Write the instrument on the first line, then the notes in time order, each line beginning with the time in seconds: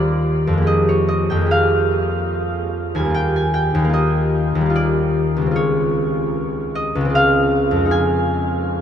harp
Already playing: D#2 G3 A#3 F4 A#4 C5 D5
0.47 F2
0.53 G#3
0.57 A#3
0.62 G4
0.67 D#5
0.89 C#5
1.08 D#5
1.30 F2 G5
1.36 G#3
1.41 A#3
1.46 G4
1.51 F5
2.95 D#2 G#5
3.00 G3
3.05 A#3
3.10 F4
3.14 G5
3.36 G#5
3.54 G5
3.75 D#2
3.80 G3
3.84 A#3
3.89 F4
3.93 D#5
4.55 D#2
4.61 G3
4.66 A#3 F4
4.76 D5
5.37 C#2
5.41 G#3
5.46 C4
5.51 F4
5.56 C#5
6.75 D#5
6.95 C#2
7.01 G#3
7.05 C4
7.10 F4
7.15 F5
7.71 F2
7.76 G#3
7.81 C4
7.86 D#4
7.91 G#5